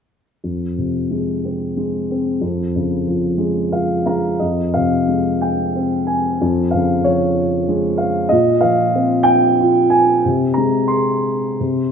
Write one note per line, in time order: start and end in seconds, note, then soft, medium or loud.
0.44 2.39 F2 soft
0.78 2.07 C3 soft
1.11 1.76 G#3 soft
1.45 2.09 C4 soft
1.77 2.40 G#3 soft
2.11 2.42 C4 soft
2.41 4.36 F2 soft
2.76 4.03 C#3 soft
3.07 3.71 F3 soft
3.38 4.05 G#3 soft
3.72 4.39 F3 soft
3.72 4.04 F5 soft
4.06 4.40 G#3 soft
4.06 4.42 F5 soft
4.06 4.39 A#5 soft
4.40 6.37 F2 soft
4.40 4.75 D#5 soft
4.74 6.05 C3 soft
4.74 5.43 F5 medium
5.08 6.36 G#3 soft
5.42 6.04 G5 medium
5.76 6.39 C4 soft
6.07 6.74 G#5 medium
6.41 8.28 F2 soft
6.71 7.96 C#3 soft
6.71 7.01 F5 medium
7.04 8.28 F3 soft
7.04 8.02 C#5 medium
7.69 8.30 G#3 soft
7.98 8.31 F5 medium
8.29 10.21 A#2 medium
8.29 8.63 D#5 medium
8.61 9.89 F3 soft
8.61 9.22 F5 medium
8.95 10.21 C4 soft
9.23 9.93 G5 medium
9.60 10.23 F4 soft
9.90 10.58 G#5 medium
10.25 11.56 C3 soft
10.54 11.57 G#3 soft
10.54 10.90 A#5 medium
10.88 11.58 G#4 soft
10.88 11.92 C6 medium
11.60 11.92 C3 soft